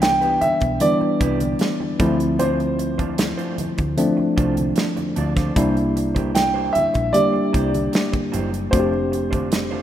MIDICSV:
0, 0, Header, 1, 8, 480
1, 0, Start_track
1, 0, Key_signature, 0, "major"
1, 0, Tempo, 791557
1, 1453, Time_signature, 4, 2, 24, 8
1, 5955, End_track
2, 0, Start_track
2, 0, Title_t, "Grand piano"
2, 0, Program_c, 0, 0
2, 10, Note_on_c, 0, 79, 82
2, 251, Note_on_c, 0, 76, 77
2, 259, Note_off_c, 0, 79, 0
2, 492, Note_on_c, 0, 74, 82
2, 499, Note_off_c, 0, 76, 0
2, 1451, Note_on_c, 0, 72, 65
2, 1481, Note_off_c, 0, 74, 0
2, 2387, Note_off_c, 0, 72, 0
2, 3849, Note_on_c, 0, 79, 81
2, 4079, Note_on_c, 0, 76, 79
2, 4098, Note_off_c, 0, 79, 0
2, 4322, Note_on_c, 0, 74, 83
2, 4333, Note_off_c, 0, 76, 0
2, 5281, Note_on_c, 0, 72, 62
2, 5317, Note_off_c, 0, 74, 0
2, 5955, Note_off_c, 0, 72, 0
2, 5955, End_track
3, 0, Start_track
3, 0, Title_t, "Clean electric guitar"
3, 0, Program_c, 1, 27
3, 129, Note_on_c, 1, 71, 61
3, 134, Note_on_c, 1, 67, 54
3, 137, Note_on_c, 1, 64, 46
3, 140, Note_on_c, 1, 59, 52
3, 241, Note_off_c, 1, 59, 0
3, 247, Note_off_c, 1, 64, 0
3, 249, Note_off_c, 1, 71, 0
3, 250, Note_off_c, 1, 67, 0
3, 729, Note_on_c, 1, 59, 60
3, 736, Note_on_c, 1, 64, 62
3, 738, Note_on_c, 1, 67, 67
3, 742, Note_on_c, 1, 71, 74
3, 846, Note_off_c, 1, 71, 0
3, 849, Note_off_c, 1, 67, 0
3, 851, Note_off_c, 1, 59, 0
3, 853, Note_off_c, 1, 64, 0
3, 1208, Note_on_c, 1, 57, 63
3, 1212, Note_on_c, 1, 62, 70
3, 1216, Note_on_c, 1, 65, 71
3, 1219, Note_on_c, 1, 72, 80
3, 1320, Note_off_c, 1, 72, 0
3, 1326, Note_off_c, 1, 65, 0
3, 1329, Note_off_c, 1, 62, 0
3, 1331, Note_off_c, 1, 57, 0
3, 1450, Note_on_c, 1, 57, 64
3, 1452, Note_on_c, 1, 62, 70
3, 1457, Note_on_c, 1, 65, 72
3, 1459, Note_on_c, 1, 72, 69
3, 1571, Note_off_c, 1, 57, 0
3, 1572, Note_off_c, 1, 62, 0
3, 1575, Note_off_c, 1, 65, 0
3, 1576, Note_off_c, 1, 72, 0
3, 1807, Note_on_c, 1, 72, 47
3, 1812, Note_on_c, 1, 65, 44
3, 1815, Note_on_c, 1, 62, 43
3, 1819, Note_on_c, 1, 57, 39
3, 1904, Note_off_c, 1, 72, 0
3, 1906, Note_off_c, 1, 65, 0
3, 1908, Note_off_c, 1, 62, 0
3, 1910, Note_off_c, 1, 57, 0
3, 2046, Note_on_c, 1, 72, 65
3, 2050, Note_on_c, 1, 65, 58
3, 2053, Note_on_c, 1, 62, 51
3, 2056, Note_on_c, 1, 57, 54
3, 2162, Note_off_c, 1, 57, 0
3, 2166, Note_off_c, 1, 62, 0
3, 2168, Note_off_c, 1, 65, 0
3, 2170, Note_off_c, 1, 72, 0
3, 2648, Note_on_c, 1, 57, 60
3, 2651, Note_on_c, 1, 62, 63
3, 2654, Note_on_c, 1, 65, 62
3, 2658, Note_on_c, 1, 72, 64
3, 2762, Note_off_c, 1, 72, 0
3, 2766, Note_off_c, 1, 65, 0
3, 2769, Note_off_c, 1, 62, 0
3, 2770, Note_off_c, 1, 57, 0
3, 3129, Note_on_c, 1, 57, 49
3, 3135, Note_on_c, 1, 62, 51
3, 3140, Note_on_c, 1, 65, 54
3, 3142, Note_on_c, 1, 74, 57
3, 3225, Note_off_c, 1, 57, 0
3, 3228, Note_off_c, 1, 62, 0
3, 3230, Note_off_c, 1, 65, 0
3, 3231, Note_off_c, 1, 74, 0
3, 3250, Note_on_c, 1, 72, 51
3, 3254, Note_on_c, 1, 65, 48
3, 3258, Note_on_c, 1, 62, 47
3, 3262, Note_on_c, 1, 57, 38
3, 3345, Note_off_c, 1, 72, 0
3, 3347, Note_off_c, 1, 65, 0
3, 3349, Note_off_c, 1, 62, 0
3, 3351, Note_off_c, 1, 57, 0
3, 3372, Note_on_c, 1, 58, 64
3, 3374, Note_on_c, 1, 64, 60
3, 3379, Note_on_c, 1, 67, 74
3, 3381, Note_on_c, 1, 72, 68
3, 3492, Note_off_c, 1, 58, 0
3, 3493, Note_off_c, 1, 64, 0
3, 3496, Note_off_c, 1, 67, 0
3, 3497, Note_off_c, 1, 72, 0
3, 3727, Note_on_c, 1, 72, 50
3, 3733, Note_on_c, 1, 67, 43
3, 3737, Note_on_c, 1, 64, 42
3, 3739, Note_on_c, 1, 58, 43
3, 3824, Note_off_c, 1, 72, 0
3, 3827, Note_off_c, 1, 67, 0
3, 3829, Note_off_c, 1, 64, 0
3, 3830, Note_off_c, 1, 58, 0
3, 3966, Note_on_c, 1, 72, 60
3, 3970, Note_on_c, 1, 67, 65
3, 3974, Note_on_c, 1, 64, 50
3, 3977, Note_on_c, 1, 58, 53
3, 4081, Note_off_c, 1, 58, 0
3, 4083, Note_off_c, 1, 64, 0
3, 4086, Note_off_c, 1, 67, 0
3, 4086, Note_off_c, 1, 72, 0
3, 4565, Note_on_c, 1, 58, 62
3, 4568, Note_on_c, 1, 64, 61
3, 4572, Note_on_c, 1, 67, 65
3, 4575, Note_on_c, 1, 72, 62
3, 4676, Note_off_c, 1, 72, 0
3, 4681, Note_off_c, 1, 67, 0
3, 4683, Note_off_c, 1, 64, 0
3, 4689, Note_off_c, 1, 58, 0
3, 5045, Note_on_c, 1, 58, 58
3, 5050, Note_on_c, 1, 64, 70
3, 5054, Note_on_c, 1, 67, 72
3, 5056, Note_on_c, 1, 72, 73
3, 5161, Note_off_c, 1, 72, 0
3, 5166, Note_off_c, 1, 67, 0
3, 5167, Note_off_c, 1, 64, 0
3, 5169, Note_off_c, 1, 58, 0
3, 5285, Note_on_c, 1, 57, 62
3, 5288, Note_on_c, 1, 62, 68
3, 5291, Note_on_c, 1, 65, 73
3, 5294, Note_on_c, 1, 72, 75
3, 5409, Note_off_c, 1, 57, 0
3, 5411, Note_off_c, 1, 62, 0
3, 5412, Note_off_c, 1, 65, 0
3, 5414, Note_off_c, 1, 72, 0
3, 5643, Note_on_c, 1, 72, 52
3, 5649, Note_on_c, 1, 65, 45
3, 5652, Note_on_c, 1, 62, 42
3, 5657, Note_on_c, 1, 57, 35
3, 5742, Note_off_c, 1, 72, 0
3, 5745, Note_off_c, 1, 65, 0
3, 5747, Note_off_c, 1, 62, 0
3, 5749, Note_off_c, 1, 57, 0
3, 5887, Note_on_c, 1, 72, 67
3, 5891, Note_on_c, 1, 65, 62
3, 5894, Note_on_c, 1, 62, 56
3, 5898, Note_on_c, 1, 57, 57
3, 5955, Note_off_c, 1, 57, 0
3, 5955, Note_off_c, 1, 62, 0
3, 5955, Note_off_c, 1, 65, 0
3, 5955, Note_off_c, 1, 72, 0
3, 5955, End_track
4, 0, Start_track
4, 0, Title_t, "Tine electric piano"
4, 0, Program_c, 2, 4
4, 0, Control_c, 2, 64, 127
4, 0, Note_on_c, 2, 52, 71
4, 0, Note_on_c, 2, 55, 66
4, 0, Note_on_c, 2, 59, 68
4, 0, Note_on_c, 2, 62, 80
4, 185, Note_off_c, 2, 52, 0
4, 186, Note_off_c, 2, 55, 0
4, 187, Note_off_c, 2, 59, 0
4, 188, Note_off_c, 2, 62, 0
4, 490, Note_on_c, 2, 52, 62
4, 493, Note_on_c, 2, 55, 60
4, 496, Note_on_c, 2, 59, 62
4, 498, Note_on_c, 2, 62, 69
4, 1146, Note_off_c, 2, 52, 0
4, 1147, Note_off_c, 2, 55, 0
4, 1149, Note_off_c, 2, 59, 0
4, 1150, Note_off_c, 2, 62, 0
4, 1210, Note_on_c, 2, 53, 78
4, 1211, Note_on_c, 2, 57, 68
4, 1214, Note_on_c, 2, 60, 74
4, 1217, Note_on_c, 2, 64, 80
4, 1222, Control_c, 2, 64, 0
4, 1330, Control_c, 2, 64, 127
4, 1979, Note_off_c, 2, 53, 0
4, 1980, Note_off_c, 2, 57, 0
4, 1981, Note_off_c, 2, 60, 0
4, 1983, Note_off_c, 2, 64, 0
4, 2411, Note_on_c, 2, 53, 77
4, 2411, Note_on_c, 2, 57, 74
4, 2414, Note_on_c, 2, 60, 72
4, 2416, Note_on_c, 2, 62, 88
4, 3066, Note_off_c, 2, 53, 0
4, 3066, Note_off_c, 2, 57, 0
4, 3068, Note_off_c, 2, 60, 0
4, 3069, Note_off_c, 2, 62, 0
4, 3371, Note_on_c, 2, 55, 76
4, 3373, Note_on_c, 2, 58, 70
4, 3375, Note_on_c, 2, 62, 68
4, 3378, Note_on_c, 2, 64, 82
4, 3379, Control_c, 2, 64, 0
4, 3475, Control_c, 2, 64, 127
4, 4026, Note_off_c, 2, 55, 0
4, 4027, Note_off_c, 2, 58, 0
4, 4028, Note_off_c, 2, 62, 0
4, 4030, Note_off_c, 2, 64, 0
4, 4328, Note_on_c, 2, 55, 67
4, 4330, Note_on_c, 2, 58, 62
4, 4332, Note_on_c, 2, 62, 57
4, 4334, Note_on_c, 2, 67, 73
4, 4985, Note_off_c, 2, 55, 0
4, 4986, Note_off_c, 2, 58, 0
4, 4987, Note_off_c, 2, 62, 0
4, 4988, Note_off_c, 2, 67, 0
4, 5288, Note_on_c, 2, 57, 62
4, 5291, Note_on_c, 2, 60, 56
4, 5294, Note_on_c, 2, 62, 52
4, 5295, Note_on_c, 2, 66, 50
4, 5300, Control_c, 2, 64, 0
4, 5333, Note_off_c, 2, 66, 0
4, 5334, Note_on_c, 2, 67, 69
4, 5420, Control_c, 2, 64, 127
4, 5946, Note_off_c, 2, 57, 0
4, 5947, Note_off_c, 2, 60, 0
4, 5948, Note_off_c, 2, 62, 0
4, 5955, Note_off_c, 2, 67, 0
4, 5955, End_track
5, 0, Start_track
5, 0, Title_t, "Fingered electric bass"
5, 0, Program_c, 3, 33
5, 0, Note_on_c, 3, 36, 90
5, 229, Note_off_c, 3, 36, 0
5, 375, Note_on_c, 3, 35, 79
5, 475, Note_off_c, 3, 35, 0
5, 734, Note_on_c, 3, 36, 76
5, 934, Note_off_c, 3, 36, 0
5, 1213, Note_on_c, 3, 38, 85
5, 2015, Note_off_c, 3, 38, 0
5, 2299, Note_on_c, 3, 38, 85
5, 2396, Note_off_c, 3, 38, 0
5, 2657, Note_on_c, 3, 36, 78
5, 2855, Note_off_c, 3, 36, 0
5, 3135, Note_on_c, 3, 38, 88
5, 3334, Note_off_c, 3, 38, 0
5, 3375, Note_on_c, 3, 36, 90
5, 4069, Note_off_c, 3, 36, 0
5, 4217, Note_on_c, 3, 34, 86
5, 4315, Note_off_c, 3, 34, 0
5, 4578, Note_on_c, 3, 36, 77
5, 4776, Note_off_c, 3, 36, 0
5, 5060, Note_on_c, 3, 30, 76
5, 5257, Note_off_c, 3, 30, 0
5, 5295, Note_on_c, 3, 29, 89
5, 5955, Note_off_c, 3, 29, 0
5, 5955, End_track
6, 0, Start_track
6, 0, Title_t, "Muted clean electric guitar strokes"
6, 248, Note_on_c, 9, 29, 27
6, 309, Note_off_c, 9, 29, 0
6, 369, Note_on_c, 9, 29, 39
6, 430, Note_off_c, 9, 29, 0
6, 609, Note_on_c, 9, 29, 34
6, 670, Note_off_c, 9, 29, 0
6, 853, Note_on_c, 9, 29, 37
6, 914, Note_off_c, 9, 29, 0
6, 974, Note_on_c, 9, 29, 32
6, 1034, Note_off_c, 9, 29, 0
6, 1092, Note_on_c, 9, 29, 40
6, 1153, Note_off_c, 9, 29, 0
6, 1328, Note_on_c, 9, 29, 33
6, 1388, Note_off_c, 9, 29, 0
6, 1690, Note_on_c, 9, 29, 27
6, 1751, Note_off_c, 9, 29, 0
6, 1929, Note_on_c, 9, 29, 25
6, 1990, Note_off_c, 9, 29, 0
6, 2169, Note_on_c, 9, 29, 34
6, 2230, Note_off_c, 9, 29, 0
6, 2291, Note_on_c, 9, 29, 35
6, 2351, Note_off_c, 9, 29, 0
6, 2528, Note_on_c, 9, 29, 35
6, 2588, Note_off_c, 9, 29, 0
6, 2770, Note_on_c, 9, 29, 37
6, 2830, Note_off_c, 9, 29, 0
6, 2885, Note_on_c, 9, 29, 39
6, 2945, Note_off_c, 9, 29, 0
6, 3011, Note_on_c, 9, 29, 39
6, 3072, Note_off_c, 9, 29, 0
6, 3613, Note_on_c, 9, 29, 29
6, 3674, Note_off_c, 9, 29, 0
6, 3847, Note_on_c, 9, 29, 33
6, 3908, Note_off_c, 9, 29, 0
6, 4089, Note_on_c, 9, 29, 36
6, 4149, Note_off_c, 9, 29, 0
6, 4207, Note_on_c, 9, 29, 39
6, 4268, Note_off_c, 9, 29, 0
6, 4444, Note_on_c, 9, 29, 36
6, 4505, Note_off_c, 9, 29, 0
6, 4683, Note_on_c, 9, 29, 44
6, 4744, Note_off_c, 9, 29, 0
6, 4806, Note_on_c, 9, 29, 34
6, 4866, Note_off_c, 9, 29, 0
6, 4926, Note_on_c, 9, 29, 35
6, 4987, Note_off_c, 9, 29, 0
6, 5168, Note_on_c, 9, 29, 33
6, 5229, Note_off_c, 9, 29, 0
6, 5526, Note_on_c, 9, 29, 34
6, 5586, Note_off_c, 9, 29, 0
6, 5765, Note_on_c, 9, 29, 32
6, 5826, Note_off_c, 9, 29, 0
6, 5955, End_track
7, 0, Start_track
7, 0, Title_t, "Muted fingered electric bass strokes"
7, 256, Note_on_c, 9, 29, 44
7, 316, Note_off_c, 9, 29, 0
7, 613, Note_on_c, 9, 29, 38
7, 674, Note_off_c, 9, 29, 0
7, 2177, Note_on_c, 9, 29, 41
7, 2237, Note_off_c, 9, 29, 0
7, 2537, Note_on_c, 9, 29, 40
7, 2597, Note_off_c, 9, 29, 0
7, 4095, Note_on_c, 9, 29, 42
7, 4156, Note_off_c, 9, 29, 0
7, 4459, Note_on_c, 9, 29, 40
7, 4519, Note_off_c, 9, 29, 0
7, 5955, End_track
8, 0, Start_track
8, 0, Title_t, "Drums"
8, 11, Note_on_c, 9, 42, 88
8, 14, Note_on_c, 9, 62, 28
8, 17, Note_on_c, 9, 38, 108
8, 72, Note_off_c, 9, 42, 0
8, 74, Note_off_c, 9, 62, 0
8, 77, Note_off_c, 9, 38, 0
8, 131, Note_on_c, 9, 62, 29
8, 134, Note_on_c, 9, 42, 28
8, 191, Note_off_c, 9, 62, 0
8, 195, Note_off_c, 9, 42, 0
8, 252, Note_on_c, 9, 42, 55
8, 254, Note_on_c, 9, 63, 58
8, 254, Note_on_c, 9, 64, 53
8, 313, Note_off_c, 9, 42, 0
8, 314, Note_off_c, 9, 63, 0
8, 314, Note_off_c, 9, 64, 0
8, 367, Note_on_c, 9, 42, 37
8, 374, Note_on_c, 9, 36, 64
8, 428, Note_off_c, 9, 42, 0
8, 434, Note_off_c, 9, 36, 0
8, 486, Note_on_c, 9, 42, 89
8, 493, Note_on_c, 9, 62, 29
8, 493, Note_on_c, 9, 63, 64
8, 547, Note_off_c, 9, 42, 0
8, 554, Note_off_c, 9, 62, 0
8, 554, Note_off_c, 9, 63, 0
8, 615, Note_on_c, 9, 62, 28
8, 675, Note_off_c, 9, 62, 0
8, 732, Note_on_c, 9, 36, 78
8, 734, Note_on_c, 9, 42, 68
8, 793, Note_off_c, 9, 36, 0
8, 795, Note_off_c, 9, 42, 0
8, 852, Note_on_c, 9, 42, 51
8, 855, Note_on_c, 9, 63, 70
8, 912, Note_off_c, 9, 42, 0
8, 916, Note_off_c, 9, 63, 0
8, 965, Note_on_c, 9, 42, 66
8, 978, Note_on_c, 9, 38, 91
8, 1026, Note_off_c, 9, 42, 0
8, 1039, Note_off_c, 9, 38, 0
8, 1095, Note_on_c, 9, 63, 41
8, 1156, Note_off_c, 9, 63, 0
8, 1210, Note_on_c, 9, 42, 58
8, 1211, Note_on_c, 9, 36, 85
8, 1218, Note_on_c, 9, 64, 63
8, 1271, Note_off_c, 9, 42, 0
8, 1272, Note_off_c, 9, 36, 0
8, 1278, Note_off_c, 9, 64, 0
8, 1335, Note_on_c, 9, 42, 48
8, 1396, Note_off_c, 9, 42, 0
8, 1452, Note_on_c, 9, 42, 86
8, 1455, Note_on_c, 9, 62, 26
8, 1455, Note_on_c, 9, 64, 62
8, 1513, Note_off_c, 9, 42, 0
8, 1516, Note_off_c, 9, 62, 0
8, 1516, Note_off_c, 9, 64, 0
8, 1576, Note_on_c, 9, 62, 27
8, 1577, Note_on_c, 9, 42, 30
8, 1637, Note_off_c, 9, 62, 0
8, 1638, Note_off_c, 9, 42, 0
8, 1694, Note_on_c, 9, 42, 58
8, 1754, Note_off_c, 9, 42, 0
8, 1814, Note_on_c, 9, 36, 60
8, 1814, Note_on_c, 9, 42, 39
8, 1818, Note_on_c, 9, 63, 62
8, 1875, Note_off_c, 9, 36, 0
8, 1875, Note_off_c, 9, 42, 0
8, 1879, Note_off_c, 9, 63, 0
8, 1929, Note_on_c, 9, 42, 98
8, 1934, Note_on_c, 9, 62, 29
8, 1935, Note_on_c, 9, 38, 110
8, 1990, Note_off_c, 9, 42, 0
8, 1995, Note_off_c, 9, 38, 0
8, 1995, Note_off_c, 9, 62, 0
8, 2054, Note_on_c, 9, 42, 31
8, 2115, Note_off_c, 9, 42, 0
8, 2172, Note_on_c, 9, 63, 58
8, 2172, Note_on_c, 9, 64, 59
8, 2173, Note_on_c, 9, 42, 61
8, 2233, Note_off_c, 9, 63, 0
8, 2233, Note_off_c, 9, 64, 0
8, 2234, Note_off_c, 9, 42, 0
8, 2291, Note_on_c, 9, 42, 39
8, 2295, Note_on_c, 9, 36, 64
8, 2352, Note_off_c, 9, 42, 0
8, 2356, Note_off_c, 9, 36, 0
8, 2410, Note_on_c, 9, 63, 66
8, 2411, Note_on_c, 9, 42, 88
8, 2471, Note_off_c, 9, 63, 0
8, 2472, Note_off_c, 9, 42, 0
8, 2534, Note_on_c, 9, 62, 27
8, 2594, Note_off_c, 9, 62, 0
8, 2654, Note_on_c, 9, 36, 80
8, 2656, Note_on_c, 9, 42, 64
8, 2714, Note_off_c, 9, 36, 0
8, 2717, Note_off_c, 9, 42, 0
8, 2772, Note_on_c, 9, 42, 54
8, 2775, Note_on_c, 9, 63, 72
8, 2832, Note_off_c, 9, 42, 0
8, 2835, Note_off_c, 9, 63, 0
8, 2884, Note_on_c, 9, 42, 68
8, 2897, Note_on_c, 9, 38, 87
8, 2945, Note_off_c, 9, 42, 0
8, 2958, Note_off_c, 9, 38, 0
8, 3013, Note_on_c, 9, 42, 26
8, 3020, Note_on_c, 9, 62, 28
8, 3020, Note_on_c, 9, 63, 44
8, 3074, Note_off_c, 9, 42, 0
8, 3081, Note_off_c, 9, 62, 0
8, 3081, Note_off_c, 9, 63, 0
8, 3131, Note_on_c, 9, 42, 61
8, 3141, Note_on_c, 9, 64, 57
8, 3191, Note_off_c, 9, 42, 0
8, 3201, Note_off_c, 9, 64, 0
8, 3254, Note_on_c, 9, 36, 81
8, 3258, Note_on_c, 9, 38, 33
8, 3258, Note_on_c, 9, 42, 50
8, 3315, Note_off_c, 9, 36, 0
8, 3318, Note_off_c, 9, 42, 0
8, 3319, Note_off_c, 9, 38, 0
8, 3373, Note_on_c, 9, 36, 90
8, 3374, Note_on_c, 9, 42, 88
8, 3379, Note_on_c, 9, 62, 30
8, 3379, Note_on_c, 9, 64, 59
8, 3434, Note_off_c, 9, 36, 0
8, 3435, Note_off_c, 9, 42, 0
8, 3440, Note_off_c, 9, 62, 0
8, 3440, Note_off_c, 9, 64, 0
8, 3496, Note_on_c, 9, 62, 31
8, 3498, Note_on_c, 9, 42, 31
8, 3557, Note_off_c, 9, 62, 0
8, 3559, Note_off_c, 9, 42, 0
8, 3619, Note_on_c, 9, 42, 59
8, 3680, Note_off_c, 9, 42, 0
8, 3732, Note_on_c, 9, 63, 59
8, 3736, Note_on_c, 9, 36, 67
8, 3739, Note_on_c, 9, 42, 40
8, 3793, Note_off_c, 9, 63, 0
8, 3797, Note_off_c, 9, 36, 0
8, 3799, Note_off_c, 9, 42, 0
8, 3853, Note_on_c, 9, 42, 98
8, 3856, Note_on_c, 9, 62, 27
8, 3859, Note_on_c, 9, 38, 102
8, 3914, Note_off_c, 9, 42, 0
8, 3917, Note_off_c, 9, 62, 0
8, 3919, Note_off_c, 9, 38, 0
8, 4095, Note_on_c, 9, 42, 59
8, 4098, Note_on_c, 9, 63, 59
8, 4098, Note_on_c, 9, 64, 58
8, 4156, Note_off_c, 9, 42, 0
8, 4159, Note_off_c, 9, 63, 0
8, 4159, Note_off_c, 9, 64, 0
8, 4211, Note_on_c, 9, 42, 36
8, 4216, Note_on_c, 9, 36, 64
8, 4271, Note_off_c, 9, 42, 0
8, 4277, Note_off_c, 9, 36, 0
8, 4331, Note_on_c, 9, 42, 84
8, 4334, Note_on_c, 9, 62, 28
8, 4334, Note_on_c, 9, 63, 70
8, 4392, Note_off_c, 9, 42, 0
8, 4395, Note_off_c, 9, 62, 0
8, 4395, Note_off_c, 9, 63, 0
8, 4461, Note_on_c, 9, 62, 28
8, 4522, Note_off_c, 9, 62, 0
8, 4574, Note_on_c, 9, 36, 80
8, 4577, Note_on_c, 9, 42, 68
8, 4635, Note_off_c, 9, 36, 0
8, 4638, Note_off_c, 9, 42, 0
8, 4694, Note_on_c, 9, 63, 70
8, 4696, Note_on_c, 9, 42, 53
8, 4755, Note_off_c, 9, 63, 0
8, 4757, Note_off_c, 9, 42, 0
8, 4809, Note_on_c, 9, 42, 69
8, 4820, Note_on_c, 9, 62, 32
8, 4822, Note_on_c, 9, 38, 93
8, 4870, Note_off_c, 9, 42, 0
8, 4881, Note_off_c, 9, 62, 0
8, 4882, Note_off_c, 9, 38, 0
8, 4932, Note_on_c, 9, 42, 27
8, 4933, Note_on_c, 9, 36, 72
8, 4939, Note_on_c, 9, 62, 27
8, 4939, Note_on_c, 9, 63, 42
8, 4993, Note_off_c, 9, 42, 0
8, 4994, Note_off_c, 9, 36, 0
8, 4999, Note_off_c, 9, 62, 0
8, 4999, Note_off_c, 9, 63, 0
8, 5055, Note_on_c, 9, 42, 61
8, 5059, Note_on_c, 9, 64, 64
8, 5115, Note_off_c, 9, 42, 0
8, 5120, Note_off_c, 9, 64, 0
8, 5177, Note_on_c, 9, 42, 46
8, 5238, Note_off_c, 9, 42, 0
8, 5294, Note_on_c, 9, 36, 100
8, 5294, Note_on_c, 9, 42, 81
8, 5298, Note_on_c, 9, 62, 29
8, 5298, Note_on_c, 9, 64, 64
8, 5354, Note_off_c, 9, 36, 0
8, 5355, Note_off_c, 9, 42, 0
8, 5358, Note_off_c, 9, 62, 0
8, 5358, Note_off_c, 9, 64, 0
8, 5418, Note_on_c, 9, 62, 32
8, 5479, Note_off_c, 9, 62, 0
8, 5538, Note_on_c, 9, 42, 57
8, 5598, Note_off_c, 9, 42, 0
8, 5656, Note_on_c, 9, 36, 67
8, 5657, Note_on_c, 9, 42, 45
8, 5661, Note_on_c, 9, 63, 58
8, 5716, Note_off_c, 9, 36, 0
8, 5718, Note_off_c, 9, 42, 0
8, 5722, Note_off_c, 9, 63, 0
8, 5771, Note_on_c, 9, 42, 94
8, 5777, Note_on_c, 9, 38, 99
8, 5832, Note_off_c, 9, 42, 0
8, 5838, Note_off_c, 9, 38, 0
8, 5896, Note_on_c, 9, 62, 31
8, 5955, Note_off_c, 9, 62, 0
8, 5955, End_track
0, 0, End_of_file